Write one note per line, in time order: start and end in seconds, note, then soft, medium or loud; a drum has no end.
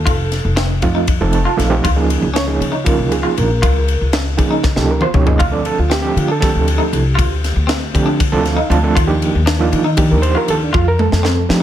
0.00 0.55 A4 medium
0.06 0.41 F1 medium
0.06 0.19 F4 medium
0.06 kick loud
0.06 ride medium
0.32 snare soft
0.32 ride medium
0.45 0.79 F1 medium
0.56 0.70 C4 medium
0.56 snare loud
0.56 ride medium
0.82 1.22 F2 medium
0.82 1.06 F3 medium
0.82 1.06 A3 medium
0.82 1.06 C4 medium
0.82 1.07 D#4 medium
0.82 1.06 F4 medium
0.82 kick medium
0.82 ride medium
0.95 1.09 D#4 medium
1.07 kick loud
1.07 ride medium
1.21 1.44 F1 medium
1.21 1.45 F3 loud
1.21 1.45 A3 medium
1.21 1.45 C4 medium
1.21 1.45 D#4 medium
1.21 1.45 A4 loud
1.33 1.58 A5 medium
1.33 ride medium
1.45 1.59 F4 medium
1.57 1.82 A#1 medium
1.57 1.66 F3 medium
1.57 1.66 A3 medium
1.57 1.66 C4 medium
1.57 1.66 D#4 medium
1.57 1.66 A4 loud
1.57 1.82 F5 medium
1.57 snare soft
1.57 ride medium
1.70 1.84 F3 medium
1.70 1.84 A3 medium
1.70 1.84 C4 medium
1.70 1.84 D#4 medium
1.70 1.84 G4 loud
1.84 2.19 C#2 medium
1.84 1.98 F4 medium
1.84 kick loud
1.84 ride medium
1.96 2.28 F3 medium
1.96 2.29 A#3 medium
1.96 2.28 C#4 medium
1.96 2.28 D#4 medium
1.96 2.29 G#4 medium
2.10 ride medium
2.22 2.57 C#2 medium
2.34 2.48 C#4 medium
2.34 2.83 C#5 medium
2.34 snare loud
2.34 ride medium
2.47 2.72 F3 medium
2.47 2.72 A#3 medium
2.47 2.72 C#4 medium
2.47 2.72 D#4 medium
2.47 2.72 G#4 medium
2.60 3.00 C#3 medium
2.60 ride medium
2.72 2.86 D#4 medium
2.84 3.49 F3 medium
2.84 3.49 A#3 medium
2.84 3.49 C#4 medium
2.84 3.49 D#4 medium
2.84 3.49 F4 medium
2.84 3.11 A#4 medium
2.84 kick loud
2.84 ride medium
2.99 3.22 C#2 medium
3.12 3.36 G#4 medium
3.12 ride medium
3.23 3.37 F4 medium
3.37 3.60 A#1 medium
3.37 4.10 A#4 medium
3.37 ride medium
3.62 3.97 C#2 medium
3.62 3.76 F4 medium
3.62 kick loud
3.62 ride medium
3.88 ride medium
4.01 4.35 C#2 medium
4.13 4.27 C#4 medium
4.13 snare loud
4.13 ride medium
4.37 4.78 C#3 medium
4.37 4.62 F3 medium
4.37 4.62 A#3 medium
4.37 4.62 C#4 medium
4.37 4.62 D#4 medium
4.37 4.62 G#4 medium
4.37 kick medium
4.37 ride medium
4.51 4.64 D#4 medium
4.64 kick loud
4.64 snare medium
4.76 5.00 C#2 medium
4.76 5.00 F3 medium
4.76 5.00 A#3 medium
4.76 5.00 C#4 medium
4.76 5.01 D#4 medium
4.76 5.01 G4 medium
4.76 4.90 A4 medium
4.76 snare medium
4.91 5.03 A#4 medium
5.01 5.15 F4 medium
5.01 5.15 C5 medium
5.01 mid tom medium
5.14 5.37 C#2 loud
5.14 5.23 F3 medium
5.14 5.23 A#3 medium
5.14 5.23 C#4 medium
5.14 5.23 D#4 medium
5.14 5.23 G4 medium
5.14 5.27 C#5 medium
5.14 mid tom loud
5.26 5.40 F3 medium
5.26 5.40 A#3 medium
5.26 5.40 C#4 medium
5.26 5.40 D#4 medium
5.26 5.40 G#4 medium
5.26 5.40 D#5 medium
5.26 floor tom medium
5.39 5.75 D2 loud
5.39 5.53 F4 medium
5.39 5.53 F5 loud
5.39 kick loud
5.39 ride medium
5.51 5.84 F3 medium
5.51 5.84 A3 medium
5.51 5.84 C4 medium
5.51 5.84 D4 medium
5.51 5.65 A4 medium
5.51 5.65 D5 medium
5.65 5.78 A4 medium
5.65 ride medium
5.79 6.13 D2 medium
5.79 5.92 F4 medium
5.90 6.04 C4 medium
5.90 6.02 G4 medium
5.90 snare loud
5.90 ride medium
6.02 6.27 F3 medium
6.02 6.27 A3 medium
6.02 6.04 C4 medium
6.02 6.17 C4 medium
6.02 6.27 D4 medium
6.02 6.27 G4 medium
6.16 6.57 D3 medium
6.16 6.29 F4 medium
6.16 ride medium
6.28 6.42 D4 medium
6.28 6.39 A4 medium
6.40 7.04 F3 medium
6.40 7.05 A3 medium
6.40 7.04 C4 medium
6.40 7.04 D4 medium
6.40 7.91 G4 medium
6.40 7.04 A4 medium
6.40 kick loud
6.40 snare soft
6.40 ride medium
6.55 6.78 D2 medium
6.68 ride medium
6.78 6.92 D#4 medium
6.93 7.16 C2 loud
6.93 ride medium
7.15 7.53 D2 loud
7.15 7.30 F4 medium
7.15 kick loud
7.15 ride medium
7.44 snare soft
7.44 ride medium
7.56 7.90 D2 medium
7.67 7.81 C4 medium
7.67 snare loud
7.67 ride medium
7.94 8.34 D3 medium
7.94 8.18 F3 medium
7.94 8.18 A3 medium
7.94 8.18 C4 medium
7.94 8.18 D4 medium
7.94 8.18 G4 medium
7.94 kick medium
7.94 ride medium
8.06 8.20 D4 medium
8.20 kick loud
8.20 ride medium
8.32 8.55 D2 medium
8.32 8.56 F3 loud
8.32 8.56 A3 loud
8.32 8.56 C4 loud
8.32 8.56 D4 medium
8.32 8.56 A4 loud
8.45 8.69 F5 medium
8.45 snare soft
8.45 ride medium
8.57 8.70 D#4 medium
8.70 8.93 D2 loud
8.70 8.78 F3 medium
8.70 8.78 A3 medium
8.70 8.78 C4 medium
8.70 8.78 D4 medium
8.70 8.78 F4 loud
8.70 8.94 A5 medium
8.70 ride medium
8.83 8.96 F3 loud
8.83 8.96 A3 medium
8.83 8.96 C4 medium
8.83 8.96 D4 medium
8.83 8.96 A4 loud
8.95 9.31 D#2 loud
8.95 9.09 F4 loud
8.95 kick loud
8.95 ride medium
9.07 9.40 F3 medium
9.07 9.40 A#3 medium
9.07 9.40 D4 medium
9.07 9.40 D#4 medium
9.07 9.40 G4 loud
9.22 ride medium
9.35 9.69 D#2 medium
9.46 9.60 D4 medium
9.46 snare loud
9.46 ride medium
9.59 9.83 F3 medium
9.59 9.83 A#3 medium
9.59 9.83 D4 medium
9.59 9.84 D#4 medium
9.59 9.84 F4 loud
9.72 10.13 D#3 medium
9.72 ride medium
9.84 9.98 D#4 medium
9.97 10.60 F3 medium
9.97 10.60 A#3 medium
9.97 10.60 D4 medium
9.97 10.60 D#4 medium
9.97 10.60 G4 medium
9.97 kick loud
9.97 ride medium
10.11 10.34 D#2 medium
10.11 10.23 A#4 medium
10.22 10.35 C5 loud
10.22 ride medium
10.35 10.48 F4 medium
10.35 10.49 A#4 medium
10.48 10.71 D#2 loud
10.48 10.62 A4 loud
10.48 ride medium
10.63 10.74 D4 medium
10.73 11.08 F2 loud
10.73 10.86 F4 loud
10.73 10.86 F4 medium
10.73 kick loud
10.88 11.00 A#4 loud
10.99 11.47 A4 medium
10.99 high tom medium
11.12 11.46 F2 medium
11.12 snare medium
11.23 11.37 C4 medium
11.23 snare medium
11.49 11.63 F3 medium
11.49 11.63 A3 medium
11.49 11.63 C4 medium
11.49 11.63 D4 medium
11.49 11.63 D#4 medium
11.49 11.63 G4 medium
11.49 snare medium